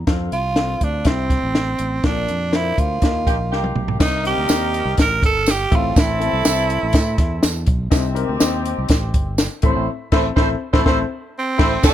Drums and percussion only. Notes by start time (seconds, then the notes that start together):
0.07 kick, snare, closed hi-hat
0.32 closed hi-hat
0.56 snare, closed hi-hat
0.81 kick, closed hi-hat
1.05 kick, snare, closed hi-hat
1.30 kick, snare, closed hi-hat
1.55 snare, closed hi-hat
1.79 closed hi-hat
2.04 kick, snare, closed hi-hat
2.28 closed hi-hat
2.53 snare, closed hi-hat
2.78 kick, closed hi-hat
3.02 kick, snare, closed hi-hat
3.27 kick, snare, closed hi-hat
3.53 snare
3.64 high tom
3.76 mid tom
3.88 floor tom
4.00 kick, snare, crash, tambourine
4.25 closed hi-hat
4.49 snare, closed hi-hat, tambourine
4.74 closed hi-hat
4.97 kick, snare, closed hi-hat, tambourine
5.23 kick, snare, closed hi-hat
5.46 snare, closed hi-hat, tambourine
5.72 kick, closed hi-hat
5.96 kick, snare, closed hi-hat, tambourine
6.22 closed hi-hat
6.45 snare, closed hi-hat, tambourine
6.70 closed hi-hat
6.93 kick, snare, closed hi-hat, tambourine
7.18 kick, snare, closed hi-hat
7.43 snare, closed hi-hat, tambourine
7.66 kick, closed hi-hat
7.91 kick, snare, closed hi-hat, tambourine
8.16 closed hi-hat
8.40 snare, closed hi-hat, tambourine
8.65 closed hi-hat
8.89 kick, snare, closed hi-hat, tambourine
9.14 kick, closed hi-hat
9.38 snare, closed hi-hat, tambourine
9.62 kick, closed hi-hat
10.12 kick, snare, crash
10.37 kick, snare
10.74 kick, snare
10.86 kick, snare
11.59 kick, snare, crash
11.83 kick, snare, crash, tambourine